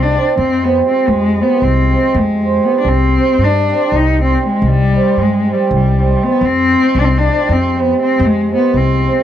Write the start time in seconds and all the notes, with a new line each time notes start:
Already playing: C2 C3 F3 G#3
0.03 D4
0.12 C3 F3 G#3 C4
0.37 F2 C4
0.62 C3 F3 G#3 B3 C4
0.86 C3 F3 G#3 C4
1.08 F2 G#3
1.37 C3 F3 G#3 C4
1.42 B3
1.62 C2 C4
1.90 C3 F3 G#3 C4
2.15 F2
2.19 G#3
2.40 C3 F3 G#3 C4
2.62 C3 F3 G#3 B3 C4
2.79 D4
2.85 C2 C4
3.15 C3 D#3 G3 C4
3.38 G2
3.44 D4
3.69 C3 D#3 G3 C4
3.92 C2 D#4
4.18 C3 D#3 G3 C4
4.41 C3 D#3 G3 C4
4.46 G#3
4.62 C2
4.67 G3
4.92 C3 D#3 G3 C4
5.17 G2 G#3
5.46 C3 D#3 G3 C4
5.53 G3
5.71 C2
5.75 G3
5.96 C3 D#3 G3 C4
6.19 C3 D#3 G3 C4
6.23 B3
6.41 F2
6.45 C4
6.71 C3 F3 G#3 C4
6.95 C2
6.99 D4
7.04 C4
7.18 D4
7.25 C3 F3 G#3 C4
7.49 F2 C4
7.74 C3 F3 G#3 C4
7.80 B3
7.95 C3 F3 G#3 C4
8.01 C4
8.20 F2
8.26 G#3
8.48 C3 F3 G#3 C4
8.55 B3
8.74 C2 C4
9.03 C3 F3 G#3 C4